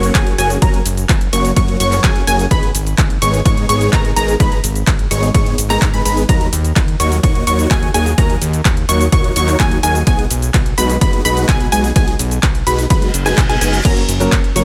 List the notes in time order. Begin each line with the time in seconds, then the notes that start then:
Already playing: F#1 F#3 A#3 C#4 F#4 C#5 C#6
0.03 closed hi-hat, shaker
0.15 F#1 G#4 G#5, kick, clap, closed hi-hat, ride, shaker
0.27 closed hi-hat
0.38 F#1 F#3 A#3 C#4 F#4 G#4 G#5, open hi-hat, shaker
0.50 closed hi-hat, shaker
0.62 F#1 F#3 A#3 C#4 F#4 A#4 A#5, kick, closed hi-hat, ride, shaker
0.74 closed hi-hat
0.85 F#1, open hi-hat, shaker
0.97 closed hi-hat, shaker
1.09 F#1, kick, clap, closed hi-hat, ride, shaker
1.21 closed hi-hat
1.33 F#1 F#3 A#3 C#4 F#4 C#5 C#6, open hi-hat, shaker
1.45 closed hi-hat, shaker
1.56 F#2 F#3 A#3 C#4 F#4 C#5 C#6, kick, closed hi-hat, ride, shaker
1.68 closed hi-hat
1.80 F#1 F#3 A#3 C#4 F#4 C#5 C#6, open hi-hat, shaker
1.92 clap, closed hi-hat, shaker
2.04 F#1 F#3 A#3 C#4 F#4 G#4 G#5, kick, clap, closed hi-hat, ride, shaker
2.16 closed hi-hat
2.27 F#1 F#3 A#3 C#4 F#4 G#4 G#5, open hi-hat, shaker
2.39 closed hi-hat, shaker
2.51 G#1 G#3 B3 D#4 G#4 B4 B5, kick, closed hi-hat, ride, shaker
2.63 closed hi-hat
2.75 G#1, open hi-hat, shaker
2.87 closed hi-hat, shaker
2.98 G#1, kick, clap, closed hi-hat, ride, shaker
3.10 closed hi-hat
3.22 G#1 G#3 B3 D#4 G#4 C#5 C#6, open hi-hat, shaker
3.34 closed hi-hat, shaker
3.45 G#2 G#3 B3 D#4 G#4 C#5 C#6, kick, closed hi-hat, ride, shaker
3.57 closed hi-hat
3.69 G#1 G#3 B3 D#4 G#4 C#5 C#6, open hi-hat, shaker
3.81 closed hi-hat, shaker
3.93 G#1 G#3 B3 D#4 G#4 A#4 A#5, kick, clap, closed hi-hat, ride, shaker
4.05 closed hi-hat
4.16 G#1 G#3 B3 D#4 G#4 A#4 A#5, open hi-hat, shaker
4.28 closed hi-hat, shaker
4.40 G#1 G#3 B3 D#4 G#4 B4 B5, kick, closed hi-hat, ride, shaker
4.52 closed hi-hat
4.64 G#1, open hi-hat, shaker
4.75 closed hi-hat, shaker
4.87 G#1, kick, clap, closed hi-hat, ride, shaker
4.99 closed hi-hat
5.11 G#1 G#3 B3 D#4 G#4 C#5 C#6, open hi-hat, shaker
5.23 closed hi-hat, shaker
5.34 G#2 G#3 B3 D#4 G#4 C#5 C#6, kick, closed hi-hat, ride, shaker
5.46 closed hi-hat
5.58 G#1, open hi-hat, shaker
5.70 G#3 B3 D#4 G#4 A#4 A#5, clap, closed hi-hat, shaker
5.82 G#1, kick, clap, closed hi-hat, ride, shaker
5.93 G#3 B3 D#4 G#4 B4 B5, closed hi-hat
6.05 G#1 G#3 B3 D#4 G#4 B4 B5, open hi-hat, shaker
6.17 closed hi-hat, shaker
6.29 D#2 F#3 A#3 D#4 F#4 A#4 A#5, kick, closed hi-hat, ride, shaker
6.41 closed hi-hat
6.53 D#2, open hi-hat, shaker
6.65 closed hi-hat, shaker
6.76 D#2, kick, clap, closed hi-hat, ride, shaker
6.88 closed hi-hat
7.00 D#2 F#3 A#3 D#4 F#4 C#5 C#6, open hi-hat, shaker
7.12 closed hi-hat, shaker
7.23 D#1 F#3 A#3 D#4 F#4 C#5 C#6, kick, closed hi-hat, ride, shaker
7.35 closed hi-hat
7.47 D#2 F#3 A#3 D#4 F#4 C#5 C#6, open hi-hat, shaker
7.59 closed hi-hat, shaker
7.71 D#2 F#3 A#3 F#4 G#5, kick, clap, closed hi-hat, ride, shaker
7.83 closed hi-hat
7.94 D#2 F#3 A#3 D#4 F#4 G#4 G#5, open hi-hat, shaker
8.06 closed hi-hat, shaker
8.18 D#2 F#3 A#3 D#4 F#4 A#4 A#5, kick, closed hi-hat, ride, shaker
8.30 closed hi-hat
8.42 D#2, open hi-hat, shaker
8.53 closed hi-hat, shaker
8.65 D#2, kick, clap, closed hi-hat, ride, shaker
8.77 closed hi-hat
8.89 D#2 F#3 A#3 D#4 F#4 C#5 C#6, open hi-hat, shaker
9.01 closed hi-hat, shaker
9.12 D#1 F#3 A#3 D#4 F#4 C#5 C#6, kick, closed hi-hat, ride, shaker
9.24 closed hi-hat
9.36 D#2 F#3 A#3 D#4 F#4 C#5 C#6, open hi-hat, shaker
9.48 clap, closed hi-hat, shaker
9.60 D#2 F#3 G#5, kick, clap, closed hi-hat, ride, shaker
9.71 closed hi-hat
9.83 D#2 F#3 A#3 D#4 F#4 G#4 G#5, open hi-hat, shaker
9.95 closed hi-hat, shaker
10.07 B1 G#3 B3 D#4 F#4 G#4 G#5, kick, closed hi-hat, ride, shaker
10.19 closed hi-hat
10.31 B1, open hi-hat, shaker
10.42 closed hi-hat, shaker
10.54 B1, kick, clap, closed hi-hat, ride, shaker
10.66 closed hi-hat
10.78 B1 G#3 B3 D#4 F#4 B4 B5, open hi-hat, shaker
10.90 closed hi-hat, shaker
11.01 F#1 G#3 B3 D#4 F#4 B4 B5, kick, closed hi-hat, ride, shaker
11.13 closed hi-hat
11.25 B1 G#3 B3 D#4 F#4 B4 B5, open hi-hat, shaker
11.37 closed hi-hat, shaker
11.49 B1 G#5, kick, clap, closed hi-hat, ride, shaker
11.60 closed hi-hat
11.72 B1 G#3 B3 D#4 F#4 G#4 G#5, open hi-hat, shaker
11.84 closed hi-hat, shaker
11.96 B1 G#3 B3 D#4 F#4 G#4 G#5, kick, closed hi-hat, ride, shaker
12.08 closed hi-hat
12.19 B1, open hi-hat, shaker
12.31 closed hi-hat, shaker
12.43 B1, kick, clap, closed hi-hat, ride, shaker
12.55 closed hi-hat
12.67 B1 G#3 B3 D#4 F#4 B4 B5, open hi-hat, shaker
12.79 closed hi-hat, shaker
12.90 F#1 G#3 B3 D#4 F#4 B4 B5, kick, closed hi-hat, ride, reverse cymbal, shaker
13.02 closed hi-hat
13.14 F#1, open hi-hat, shaker
13.26 G#3 B3 D#4 F#4 G#4 G#5, clap, closed hi-hat, shaker
13.38 B1, kick, clap, closed hi-hat, ride, shaker
13.49 G#3 B3 D#4 F#4 G#4 G#5, closed hi-hat
13.61 F#1 G#3 B3 D#4 F#4 G#4 G#5, open hi-hat, shaker
13.73 closed hi-hat, shaker
13.84 F#1 F#3 A#3 C#4 F#4 A#4 A#5, kick, closed hi-hat, crash, ride, shaker
13.97 closed hi-hat
14.08 F#1, open hi-hat, shaker
14.20 F#3 A#3 C#4 A#4, closed hi-hat, shaker
14.32 F#1, kick, clap, closed hi-hat, ride, shaker
14.44 closed hi-hat
14.55 F#1 F#3 A#3 C#4 F#4 A#4 C#5 C#6, open hi-hat, shaker